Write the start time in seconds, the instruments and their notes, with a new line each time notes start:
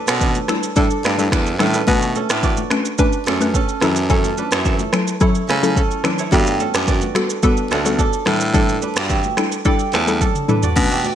Already playing: synth pluck G3 D4 E4 A4, kora D4 B4
0.08 baritone saxophone B2, kora C#4 A4, finger snap, cross-stick, shaker
0.21 kora D4 B4, kick, low conga, shaker
0.35 high conga, shaker
0.48 synth pluck G3 D4 E4 A4, finger snap, cross-stick, high conga, shaker
0.63 shaker
0.76 baritone saxophone A2, synth pluck G3 D4 E4 A4, kora D4 A4, kick, shaker
0.90 shaker
1.04 baritone saxophone G2, kora D4 B4, finger snap, cross-stick, high conga, shaker
1.18 baritone saxophone G2, synth pluck G3 D4 E4 A4, high conga, shaker
1.32 baritone saxophone E2, kora D4 B4, finger snap, kick, cross-stick, shaker
1.47 shaker
1.59 baritone saxophone A2, synth pluck G3 D4 E4 A4, kora C#4 A4, finger snap, cross-stick, high conga, low conga, shaker
1.74 kora D4 B4, shaker
1.87 baritone saxophone B2, synth pluck A3 C#4 D4 B4, kora A3 F#4, kick, low conga, shaker
2.02 high conga, shaker
2.15 kora C#4 A4, high conga, shaker
2.30 baritone saxophone A2, kora D4 B4, finger snap, cross-stick, shaker
2.43 kora F#4 D5, kick, low conga, shaker
2.57 high conga, shaker
2.70 synth pluck A3 C#4 D4 B4, finger snap, cross-stick, high conga, shaker
2.85 shaker
2.98 synth pluck A3 C#4 D4 B4, kora D4 B4, kick, shaker
3.13 shaker
3.26 baritone saxophone F#2, kora C#4 A4, finger snap, cross-stick, high conga, shaker
3.40 synth pluck A3 C#4 D4 B4, high conga, shaker
3.54 kora C#4 A4, kick, shaker
3.69 shaker
3.81 baritone saxophone F#2, synth pluck F#3 C#4 E4 A4, kora E4 B4, finger snap, cross-stick, high conga, low conga, shaker
3.96 shaker
4.10 synth pluck F#3 C#4 E4 A4, kora C#4 A4, kick, low conga, shaker
4.24 high conga, shaker
4.37 kora D4 B4, high conga, shaker
4.52 baritone saxophone F#2, kora E4 C#5, finger snap, cross-stick, shaker
4.65 kora A4 E5, kick, low conga, shaker
4.79 high conga, shaker
4.93 synth pluck F#3 C#4 E4 A4, finger snap, cross-stick, high conga, shaker
5.07 shaker
5.21 synth pluck F#3 C#4 E4 A4, kora E4 C#5, kick, shaker
5.35 shaker
5.49 baritone saxophone C#3, kora C#4 A4, finger snap, cross-stick, high conga, shaker
5.62 synth pluck F#3 C#4 E4 A4, high conga, shaker
5.76 kora C#4 A4, kick, shaker
5.91 shaker
6.04 synth pluck F#3 C#4 E4 A4, kora D4 B4, finger snap, cross-stick, high conga, low conga, shaker
6.18 kora E4 C#5, shaker
6.32 baritone saxophone G2, synth pluck G3 B3 F#4 A4, kora B3 G4, kick, low conga, shaker
6.47 high conga, shaker
6.60 kora C#4 A4, high conga, shaker
6.74 baritone saxophone F#2, kora D4 B4, finger snap, cross-stick, shaker
6.88 kora F#4 D5, kick, low conga, shaker
7.01 high conga, shaker
7.15 synth pluck G3 B3 F#4 A4, finger snap, cross-stick, high conga, shaker
7.30 shaker
7.43 synth pluck G3 B3 F#4 A4, kora D4 B4, kick, shaker
7.57 shaker
7.71 baritone saxophone D2, kora C#4 A4, finger snap, cross-stick, high conga, shaker
7.85 synth pluck G3 B3 F#4 A4, high conga, shaker
7.99 kora D4 A4, kick, shaker
8.13 shaker
8.26 baritone saxophone A2, synth pluck G3 D4 E4 A4, kora D4 B4, finger snap, cross-stick, high conga, low conga, shaker
8.41 shaker
8.54 synth pluck G3 D4 E4 A4, kora D4 A4, kick, low conga, shaker
8.69 high conga, shaker
8.82 kora D4 B4, high conga, shaker
8.96 baritone saxophone G2, kora F#4 D5, finger snap, cross-stick, shaker
9.10 kora G4 E5, kick, low conga, shaker
9.23 high conga, shaker
9.37 synth pluck G3 D4 E4 A4, finger snap, cross-stick, high conga, shaker
9.52 shaker
9.65 synth pluck G3 D4 E4 A4, kora G4 D5, kick, shaker
9.79 shaker
9.93 baritone saxophone E2, kora C#4 A4, finger snap, cross-stick, high conga, shaker
10.07 synth pluck G3 D4 E4 A4, high conga, shaker
10.21 kora D4 A4, kick, high tom, shaker
10.35 mid tom, shaker
10.48 synth pluck G3 D4 E4 A4, kora D4 B4, mid tom, high conga, low conga, shaker
10.63 kora F#4 D5, floor tom, shaker
10.76 baritone saxophone B2, synth pluck A3 C#4 D4 B4, kick, crash, low conga, shaker
10.91 kora G4 E5, high conga, shaker
11.04 kora F#4 D5, high conga, shaker